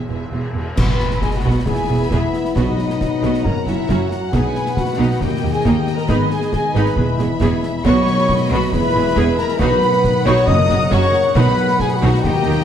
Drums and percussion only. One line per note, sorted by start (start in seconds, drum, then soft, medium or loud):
0.77 concert bass drum medium
0.77 snare medium
0.77 crash medium
1.00 snare soft
1.11 snare medium
1.21 concert bass drum medium
1.21 snare medium
1.66 concert bass drum medium
1.66 snare medium
2.11 concert bass drum medium
2.11 snare medium
2.33 snare medium
2.45 snare soft
2.56 concert bass drum medium
2.56 snare medium
2.78 snare medium
2.90 snare medium
3.01 concert bass drum medium
3.01 snare medium
3.23 snare medium
3.34 snare medium
3.45 concert bass drum medium
3.67 snare medium
3.89 concert bass drum medium
3.89 snare medium
4.11 snare medium
4.33 concert bass drum medium
4.33 snare medium
4.33 crash soft
4.55 snare soft
4.66 snare medium
4.77 concert bass drum medium
4.77 snare medium
5.21 concert bass drum medium
5.21 snare medium
5.65 concert bass drum medium
5.65 snare medium
5.87 snare medium
5.98 snare medium
6.09 concert bass drum medium
6.09 snare medium
6.30 snare medium
6.42 snare medium
6.53 concert bass drum medium
6.53 snare medium
6.75 snare soft
6.86 snare medium
6.97 concert bass drum medium
7.19 snare medium
7.41 concert bass drum medium
7.41 snare medium
7.63 snare medium
7.85 concert bass drum medium
7.85 snare medium
7.85 crash soft
8.07 snare medium
8.18 snare medium
8.29 concert bass drum medium
8.29 snare medium
8.72 concert bass drum medium
8.72 snare medium
9.16 concert bass drum medium
9.16 snare medium
9.38 snare medium
9.48 snare medium
9.59 concert bass drum loud
9.59 snare medium
9.82 snare medium
9.93 snare medium
10.04 concert bass drum medium
10.04 snare medium
10.26 snare medium
10.36 snare medium
10.47 concert bass drum medium
10.69 snare medium
10.91 concert bass drum medium
10.91 snare medium
11.13 snare medium
11.35 concert bass drum medium
11.35 snare medium
11.35 crash soft
11.57 snare medium
11.68 snare medium
11.79 concert bass drum medium
11.79 snare medium
12.24 concert bass drum medium
12.24 snare medium